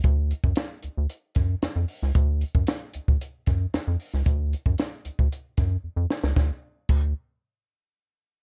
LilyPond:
<<
  \new Staff \with { instrumentName = "Analog synth bass" } { \clef bass \time 4/4 \key c \lydian \tempo 4 = 114 d,8. fis,16 r8 d,16 d,16 r8 fis,8 f,16 f,16 r16 cis,16 | d,8. fis,16 r8 d,16 d,16 r8 fis,8 f,16 f,16 r16 cis,16 | d,8. fis,16 r8 d,16 d,16 r8 fis,8 f,16 f,16 r16 cis,16 | d,16 r8. d,8 r2 r8 | }
  \new DrumStaff \with { instrumentName = "Drums" } \drummode { \time 4/4 <hh bd>8 hh16 bd16 <hh sn>8 hh8 hh8 <hh bd sn>8 <hh sn>8 hho16 sn16 | <hh bd>8 hh16 bd16 <hh sn>8 hh16 bd16 hh8 <hh bd sn>8 <hh sn>8 hho16 sn16 | <hh bd>8 hh16 bd16 <hh sn>8 hh16 bd16 hh8 <hh bd sn>8 r8 sn16 sn16 | <bd sn>4 <cymc bd>4 r4 r4 | }
>>